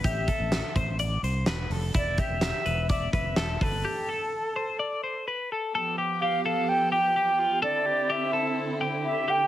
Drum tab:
HH |xxxxxxxo|xxxxxxxo|--------|--------|
SD |--o---o-|--o---o-|--------|--------|
BD |oo-o----|oo--oo-o|--------|--------|

HH |--------|
SD |--------|
BD |--------|